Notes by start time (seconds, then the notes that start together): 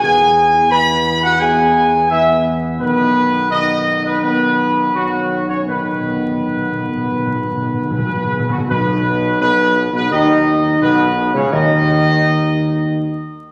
0.02 E2 E3 B3 G#4 G#5
0.71 E3 B3 B4 B5
1.23 F#4 F#5
1.40 E3 B3 G#4 G#5
2.10 E3 B3 E4 E5
2.79 B1 D#3 B3 B4
3.49 D#3 B3 D#4 D#5
4.05 B3 B4
4.20 D#3 B3 B4
4.92 D#3 F#3 B3 F#4
5.49 C#4 C#5
5.66 B2 D#3 B3 B4
5.75 B2
5.84 B2
5.92 B2
5.99 B2
6.24 B2
6.31 B2
6.39 B2
6.47 B2
6.56 B2
6.65 B2
6.71 B2
6.80 B2
6.88 B2
6.95 B2
7.03 B2
7.11 B2
7.19 B2
7.26 B2
7.35 B2
7.42 B2
7.50 B2
7.57 B2
7.65 B2
7.73 B2
7.82 B2
7.90 B2 B4
7.98 B2
8.07 B2
8.15 B2
8.24 B2
8.32 B2
8.39 B2
8.49 B2 F#4
8.58 B2
8.68 B1 B2 B3 B4
9.40 B1 B2 B3 B4
9.92 B1 B2 B3 B4
10.10 D#2 D#3 D#4 D#5
10.80 B1 B2 B3 B4
11.33 C#2 C#3 C#4 C#5
11.52 D#2 D#3 D#4 D#5